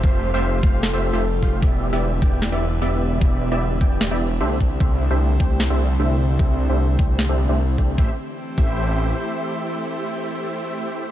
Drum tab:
SD |----o---|----o---|----o---|----o---|
BD |o--o---o|o--o----|o--o---o|o--o----|

SD |----o---|--------|--------|
BD |o--o---o|o--o----|--------|